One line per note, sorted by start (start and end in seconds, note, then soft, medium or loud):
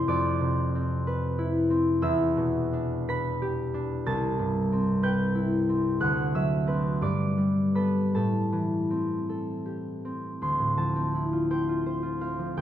0.00 0.12 C3 medium
0.00 0.74 C4 medium
0.00 1.37 E4 medium
0.00 0.11 A4 medium
0.00 2.05 C5 medium
0.00 2.02 E5 medium
0.00 0.12 F5 medium
0.00 0.11 A5 medium
0.00 2.05 C6 medium
0.00 2.01 E6 medium
0.00 0.12 F6 medium
0.08 2.04 F2 medium
0.08 3.99 D5 medium
0.08 3.98 D6 medium
0.41 2.04 C3 medium
0.75 1.69 C4 soft
1.07 3.07 B4 medium
1.39 5.29 E4 medium
1.70 2.05 C4 medium
2.02 4.09 E2 medium
2.02 5.93 E5 medium
2.02 5.92 E6 medium
2.37 4.09 B2 medium
2.73 3.73 D4 medium
3.08 5.02 B4 medium
3.08 7.00 B5 medium
3.08 6.99 B6 loud
3.42 6.05 G4 medium
3.74 4.09 D4 medium
4.06 6.05 C2 medium
4.06 7.97 A5 medium
4.06 5.72 A6 loud
4.39 6.05 G2 medium
4.72 5.68 C4 medium
5.03 6.66 B4 medium
5.03 6.05 G5 medium
5.03 6.04 G6 medium
5.35 7.05 E4 medium
5.69 6.66 C4 medium
6.00 7.05 D2 medium
6.00 7.06 F#5 medium
6.00 7.05 F#6 medium
6.34 7.06 F#3 medium
6.34 7.06 E5 medium
6.34 7.06 E6 medium
6.67 7.05 C4 soft
6.67 7.75 B4 soft
7.02 8.18 G2 medium
7.02 8.19 D5 medium
7.02 8.19 D6 medium
7.38 10.44 G3 soft
7.75 8.18 B3 soft
7.75 8.15 A4 soft
7.75 8.18 B4 medium
7.75 8.18 B5 medium
8.15 10.44 A2 medium
8.15 9.28 A4 soft
8.15 10.76 A5 medium
8.53 10.44 E3 soft
8.90 10.04 C4 soft
9.29 12.59 A4 soft
9.66 10.44 G4 soft
10.05 10.95 C4 soft
10.42 12.56 D2 soft
10.42 12.61 C6 medium
10.59 12.60 A2 soft
10.78 12.38 F3 soft
10.78 12.59 A5 medium
10.96 12.20 C4 soft
11.15 12.61 E4 soft
11.33 11.68 F4 soft
11.51 11.85 C5 soft
11.51 12.56 G5 medium
11.69 12.02 F4 soft
11.86 12.61 C5 soft
12.03 12.60 F4 soft
12.21 12.61 C4 soft
12.21 12.60 F5 medium
12.39 12.60 F3 soft
12.57 12.61 D2 medium
12.57 12.61 G5 medium